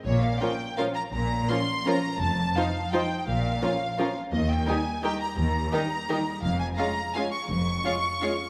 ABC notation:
X:1
M:3/4
L:1/8
Q:1/4=168
K:Bbdor
V:1 name="Violin section"
d f g2 f b | b2 c'2 b2 | =a2 f2 g2 | f4- f z |
e g a2 g b | b6 | f a b2 a d' | d'6 |]
V:2 name="Violin section"
z2 [FB]2 [FB]2 | z2 [FB]2 [FB]2 | z2 [Fc]2 [Fc]2 | z2 [FB]2 [FB]2 |
z2 [GB]2 [GB]2 | z2 [GB]2 [GB]2 | z2 [Ff]2 [Ff]2 | z2 [Ff]2 [Ff]2 |]
V:3 name="French horn section"
z2 [F,D]2 [F,D]2 | z2 [F,D]2 [F,D]2 | z2 [F,E]2 [F,E]2 | z2 [F,D]2 [F,D]2 |
z2 [G,E]2 [G,E]2 | z2 [G,E]2 [G,E]2 | z2 [A,F]2 [A,F]2 | z2 [A,F]2 [A,F]2 |]
V:4 name="Viola section"
z2 [F,D]2 [F,D]2 | z2 [F,D]2 [F,D]2 | z2 [F,E]2 [F,E]2 | z2 [F,D]2 [F,D]2 |
z2 [E,E]2 [E,E]2 | z2 [E,E]2 [E,E]2 | z2 [A,D]2 [A,D]2 | z2 [A,D]2 [A,D]2 |]
V:5 name="Cello section" clef=bass
B,,2 z4 | B,,2 z4 | F,,2 z4 | B,,2 z4 |
E,,2 z4 | E,,2 z4 | F,,2 z4 | F,,2 z4 |]
V:6 name="Double bass section" clef=bass
B,,,2 z4 | B,,,2 z4 | F,,,2 z4 | B,,,2 z4 |
E,,2 z4 | E,,2 z4 | F,,,2 z4 | F,,,2 z4 |]